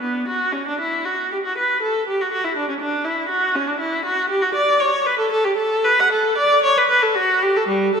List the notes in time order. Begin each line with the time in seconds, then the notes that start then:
0.02 B3
0.28 F#4
0.53 C#4
0.68 D4
0.80 E4
1.05 F#4
1.32 G4
1.46 F#4
1.58 B4
1.82 A4
2.07 G4
2.21 F#4
2.32 F#4
2.44 E4
2.56 D4
2.69 C#4
2.80 D4
3.04 E4
3.29 F#4
3.55 C#4
3.67 D4
3.80 E4
4.05 F#4
4.29 G4
4.42 F#4
4.54 D5
4.80 C#5
5.06 B4
5.19 A4
5.32 A4
5.45 G4
5.56 A4
5.84 B4
6.00 F#5
6.12 A4
6.38 D5
6.63 C#5
6.78 B4
6.89 B4
7.02 A4
7.15 F#4
7.43 G4
7.56 A4
7.68 G3
7.95 A4